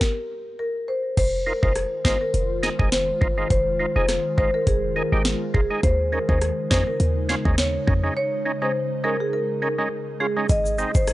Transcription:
0.01 kick, snare
0.59 marimba A#4
0.88 marimba C5
1.17 808-style bass F1, ambient pad D#3 G#3 F4, marimba C5, kick, closed hi-hat, crash
1.46 tonewheel organ D#4 F4, marimba A#4
1.63 808-style bass F1, tonewheel organ G#3 D#4 F4, marimba C5, kick
1.75 cross-stick, closed hi-hat
2.05 808-style bass G1, tonewheel organ G#3 D#4 F4, marimba C5, kick, snare
2.21 marimba A#4
2.34 808-style bass F1, closed hi-hat
2.63 tonewheel organ D#4 G#4, snare
2.79 808-style bass F1, tonewheel organ G#3 D#4 G#4, kick
2.92 marimba C5, snare, closed hi-hat
3.21 808-style bass G1, tonewheel organ D#4 F4, kick
3.38 tonewheel organ G#3 D#4 F4
3.50 808-style bass F1, marimba C5, kick, closed hi-hat
3.79 tonewheel organ D#4 F4
3.96 808-style bass F1, tonewheel organ G#3 D#4 G#4, marimba C5
4.08 cross-stick, snare, closed hi-hat
4.38 808-style bass G1, tonewheel organ G#3 D#4 F4, marimba C5, kick
4.54 marimba A#4
4.67 808-style bass F1, marimba G#4, kick, closed hi-hat
4.96 tonewheel organ D#4 G#4, marimba A#4
5.12 808-style bass G#1, tonewheel organ G#3 D#4 G4
5.25 snare, closed hi-hat
5.54 808-style bass F1, tonewheel organ D#4 F4, marimba G#4, kick
5.70 tonewheel organ G#3 D#4 G#4
5.83 808-style bass D#2, ambient pad C#3 D#4, marimba C5, kick, closed hi-hat
6.12 tonewheel organ C#4 D#4, marimba A#4
6.29 808-style bass D#2, tonewheel organ G#3 C#4 D#4, marimba C5, kick
6.41 cross-stick, closed hi-hat
6.71 808-style bass F2, tonewheel organ G#3 C#4 D#4, marimba C5, kick, snare
6.87 marimba A#4
7.00 808-style bass D#2, closed hi-hat
7.29 tonewheel organ C#4 F4, snare
7.45 808-style bass D#2, tonewheel organ G#3 C#4 D#4, kick
7.58 marimba C#5, snare, closed hi-hat
7.87 808-style bass F2, tonewheel organ C#4 D#4, kick
8.03 tonewheel organ G#3 C#4 D#4
8.17 marimba C#5
8.45 tonewheel organ C#4 D#4
8.62 tonewheel organ G#3 C#4 D#4, marimba C5
9.04 tonewheel organ G#3 C#4 D#4, marimba A#4
9.20 marimba G#4
9.33 marimba A#4
9.62 tonewheel organ C#4 D#4, marimba A#4
9.78 tonewheel organ G#3 C#4 D#4
10.20 tonewheel organ C#4 F4, marimba G#4
10.37 tonewheel organ G#3 C#4 D#4
10.49 808-style bass G#1, ambient pad C3 G#3 D#4, marimba D#5, kick, closed hi-hat, shaker
10.66 shaker
10.78 tonewheel organ G#3 C4 D#4, shaker
10.95 808-style bass G#1, marimba C5, kick, shaker
11.07 cross-stick, closed hi-hat, shaker

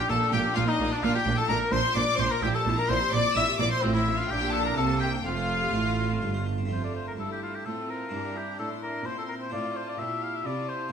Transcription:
0.00 oboe G4
0.09 double bass section A#1, cello section A#2, harpsichord A#2 D4, viola section A#3, oboe A4, violin section A4 A5
0.21 viola section D4, harpsichord A#4
0.32 double bass section A#1, cello section A#2, harpsichord A#2 D4, viola section A#3, violin section G4 G5, oboe G4
0.44 harpsichord A#3, viola section D4
0.55 double bass section A#1, cello section A#2, harpsichord A#2 D4, viola section A#3, violin section F4 F5, oboe F4
0.66 viola section D4, violin section D#4 D#5, oboe D#4, harpsichord A#4
0.79 double bass section A#1, cello section A#2, harpsichord A#2 D4, viola section A#3
0.91 harpsichord A#3, violin section D4 D5, viola section D4, oboe D4
1.02 double bass section A#1, harpsichord A#2, cello section A#2, viola section D4, violin section F4 F5, oboe F4
1.14 violin section G4 G5, oboe G4, harpsichord A#4
1.25 double bass section A#1, harpsichord A#2 D4, cello section A#2, viola section D4
1.37 harpsichord E4, oboe A4, violin section A4 A5
1.48 double bass section A#1, harpsichord A#2 D4, cello section A#2, viola section D4, oboe A#4, violin section A#4 A#5
1.59 harpsichord A#4
1.72 double bass section A#1, harpsichord A#2 D4, cello section A#2, viola section D4, oboe C5, violin section C5 C6
1.84 harpsichord A#3
1.95 double bass section A#1, harpsichord A#2 D4, cello section A#2, viola section D4, violin section D5 D6, oboe D5
2.08 harpsichord A#4
2.18 double bass section A#1, cello section A#2, harpsichord A#2 D4, viola section D4, violin section C5 C6, oboe C5
2.30 harpsichord A#3, violin section A#4 A#5, oboe A#4
2.42 double bass section A#1, cello section A#2, harpsichord A#2, viola section E4, oboe G4, violin section G4 G5
2.53 harpsichord G4, violin section A4 A5, oboe A4
2.65 double bass section A#1, harpsichord A#2 C4, cello section A#2, viola section E4
2.77 harpsichord D4, violin section A#4 A#5, oboe A#4
2.89 double bass section A#1, harpsichord A#2 C4, cello section A#2, viola section E4, violin section C5 C6, oboe C5
3.01 harpsichord G4
3.12 double bass section A#1, cello section A#2, harpsichord A#2 C4, viola section E4, violin section D5 D6, oboe D5
3.35 double bass section A#1, cello section A#2, harpsichord A#2 C4, viola section E4, violin section E5 E6, oboe E5
3.48 harpsichord G4
3.59 double bass section A#1, cello section A#2, harpsichord A#2 C4, viola section E4, oboe D5, violin section D5 D6
3.70 oboe C5, violin section C5 C6
3.82 double bass section A1, harpsichord A2, cello section A2, oboe C4, violin section C4 C5, viola section F4
3.94 oboe E4, violin section E4 E5, harpsichord A4
4.06 harpsichord C4, viola section E4
4.17 harpsichord D4, oboe F4, violin section F4 F5
4.29 double bass section A#1, harpsichord A#2, cello section A#2, viola section D4, violin section G4 G5, oboe G4
4.42 harpsichord G4
4.52 harpsichord D4, oboe A4, violin section A4 A5
4.64 harpsichord E4, oboe A#4, violin section A#4 A#5
4.76 double bass section C2, harpsichord C3, cello section C3, viola section A#3, violin section A4 A5, oboe A4
4.88 harpsichord A#4
5.00 harpsichord C4, oboe G4, violin section G4 G5
5.13 harpsichord D4
5.24 double bass section F1, harpsichord F2, cello section F2, viola section A3, oboe F4, violin section F4 F5
5.37 harpsichord C5
5.49 harpsichord F4
5.61 harpsichord G4
5.73 double bass section A1, cello section A2, harpsichord A2 F4
5.86 harpsichord C5
5.98 harpsichord F4
6.10 harpsichord C4
6.22 double bass section G1, harpsichord G2 F4, cello section G2
6.34 harpsichord C5
6.46 harpsichord F4
6.58 harpsichord C4
6.66 harpsichord A3 C4 F4
6.70 harpsichord F2, cello section F2, viola section A3, violin section F4 A5, oboe C5
6.84 oboe D5
6.95 oboe C5
7.08 oboe A#4
7.17 harpsichord G2, cello section G2, violin section E4, oboe A4
7.32 oboe G4
7.43 oboe F4
7.55 oboe G4
7.65 cello section A2, harpsichord A2, viola section C4, violin section F4, oboe A4
7.89 oboe A#4
8.09 harpsichord G2 C4 E4, cello section G2, viola section D4, violin section G4 A#5
8.36 violin section E4, oboe G4
8.59 cello section A2, harpsichord A2, violin section E4 C6, oboe A4
8.83 oboe A#4
9.05 cello section A#2, harpsichord A#2, viola section C4, oboe C5, violin section C6
9.18 oboe A4
9.29 oboe A#4
9.41 oboe C5
9.50 cello section A2, harpsichord A2 C4 F4, violin section F4 A5, viola section F4, oboe D5
9.76 oboe C5
9.89 oboe D5
9.98 cello section A#2, harpsichord A#2, viola section E4, violin section G4, oboe E5
10.22 oboe F5
10.35 oboe E5
10.45 cello section C3, harpsichord C3, violin section F4 A5, oboe D5
10.69 oboe C5
10.89 harpsichord A#3

